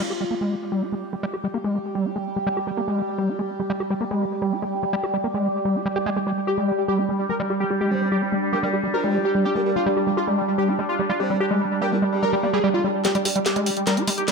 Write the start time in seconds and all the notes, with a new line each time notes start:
Already playing: G3 G4
0.10 G4
0.21 G3
0.31 A#3
0.41 G#3
0.51 G3
0.72 G3
0.82 G4
0.92 G#3
1.13 G3
1.23 G3
1.33 G4
1.44 G3
1.54 A#3
1.64 G#3
1.75 G3
1.95 G3
2.05 G4
2.16 G#3
2.36 G3
2.47 G3
2.57 G4
2.67 G3
2.77 A#3
2.88 G#3
2.98 G3
3.18 G3
3.29 G4
3.39 G#3
3.60 G3
3.70 G3
3.80 G4
3.90 G3
4.01 A#3
4.11 G#3
4.21 G3
4.42 G3
4.52 G4
4.62 G#3
4.83 G3
4.93 G3
5.03 G4
5.14 G3
5.24 A#3
5.34 G#3
5.44 G3
5.65 G3
5.75 G4
5.86 G3
5.96 G4
6.06 G#3
6.16 G#3
6.27 G3
6.47 D4 G4
6.57 G3 G#3
6.68 G3
6.78 G3
6.88 G3 G4
6.99 G3 G4
7.09 G3 G#3
7.19 G3
7.29 G3 A#4
7.40 G3
7.50 G3 G4
7.60 G3 G4
7.70 G3 G4
7.81 G#3 G4
7.91 G3 C4
8.01 G3
8.12 G3 G4
8.22 G3 G4
8.32 G3 G#3
8.42 G3
8.53 G3 A#3 G4
8.63 G3 A#3
8.73 G3 G4
8.83 G3
8.94 F3 G4 A#4
9.04 G3 G#3
9.14 G3
9.25 G4
9.35 G3
9.45 G4
9.55 G3 G#3 A#3
9.66 G3 A#3
9.76 G3 F4
9.86 G3
9.96 G3 G4
10.07 G3
10.17 F4 G4
10.27 G3 G#3
10.38 G3
10.48 G3
10.58 G3 G4
10.68 G3 G4
10.79 G3 G#3
10.89 F4
10.99 G3
11.10 G3 F4
11.20 G3 C4 G4
11.30 G3
11.40 G4
11.51 G3 G#3
11.61 G3
11.71 G3
11.81 G3 A#3 G4
11.92 G3 A#3 G4
12.02 G3 G#3
12.12 G3
12.22 G3 A#4
12.33 G3
12.43 G3 A#3
12.53 G3 G#4
12.64 G3
12.74 G3 F4
12.84 G3
12.94 G3
13.05 G3 G4, snare, closed hi-hat
13.15 G3, closed hi-hat
13.25 G3 G4, open hi-hat
13.36 G3, closed hi-hat
13.46 G4, snare, closed hi-hat
13.56 G3 G#3, closed hi-hat
13.66 G3, open hi-hat
13.77 G3, closed hi-hat
13.87 G3 A#4, snare, closed hi-hat
13.97 G3 G4, closed hi-hat
14.07 G3 G#3, open hi-hat
14.18 G4, closed hi-hat
14.28 G3, snare, closed hi-hat